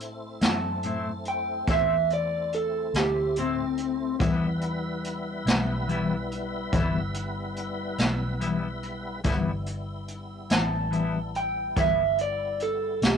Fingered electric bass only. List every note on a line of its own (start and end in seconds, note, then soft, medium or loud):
0.00 0.38 A2 medium
0.41 1.64 F#2 medium
1.68 2.90 E2 medium
2.94 4.16 D2 medium
4.20 5.43 E2 medium
5.46 6.68 B1 medium
6.73 7.95 G1 medium
7.99 9.21 B1 medium
9.25 10.47 G1 medium
10.51 11.73 A1 medium
11.77 12.99 G1 medium
13.02 13.17 B1 medium